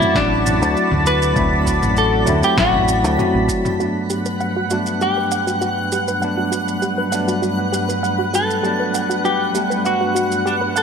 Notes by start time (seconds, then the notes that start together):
Already playing: F#3 A3 C4 E4 F#4 D5 A5 B5
0.02 mid tom, shaker
0.15 A1 D4, kick, snare, shaker
0.46 mid tom, shaker
0.62 D2, shaker
0.77 shaker
0.92 D2, mid tom
1.06 B4, shaker
1.22 shaker
1.34 D2 F#3 A3 C4, kick, mid tom, shaker
1.39 E4
1.66 kick, shaker
1.82 A1, mid tom, shaker
1.97 A4, shaker
2.25 D2 F#3 A3 C4, mid tom, shaker
2.29 E4
2.43 G4, shaker
2.58 A1 F#4, kick, snare, shaker
2.73 mid tom
2.88 shaker
3.04 D2, shaker
3.17 F#3 A3 C4 F#4, mid tom, shaker
3.34 A1
3.48 kick, shaker
3.65 mid tom, shaker
3.77 G2 F#3 A3 B3 F#4 B4 F#5, shaker
3.82 D4
4.10 G4, shaker
4.26 B4, shaker
4.40 F#5, shaker
4.56 F#4
4.68 G2 G3 A3 B3 F#4, shaker
4.73 D4
4.86 shaker
5.01 G4, shaker
5.17 B4
5.31 F#5, shaker
5.47 F#4, shaker
5.60 F#4, shaker
5.92 G4, shaker
6.08 B4, shaker
6.19 G2 F#3 A3 B3 F#5, shaker
6.24 D4
6.37 F#4
6.52 F#4, shaker
6.68 shaker
6.82 G4, shaker
6.98 B4
7.10 G2 F#3 A3 B3 F#5, shaker
7.14 D4
7.28 F#4, shaker
7.42 F#4, shaker
7.72 G4, shaker
7.89 B4, shaker
8.03 F#5, shaker
8.18 F#4
8.34 F#4 A4, shaker
8.50 shaker
8.61 G2 F#3 A3 B3 G4 F#5, shaker
8.66 D4
8.80 B4
8.94 F#5, shaker
9.10 F#4, shaker
9.25 F#4 G4, shaker
9.52 G2 G3 A3 B3 G4, shaker
9.57 D4
9.70 B4, shaker
9.85 F#4 F#5, shaker
10.01 F#4
10.15 F#4, shaker
10.32 shaker
10.46 D4 G4, shaker
10.61 B4
10.76 A4 F#5, shaker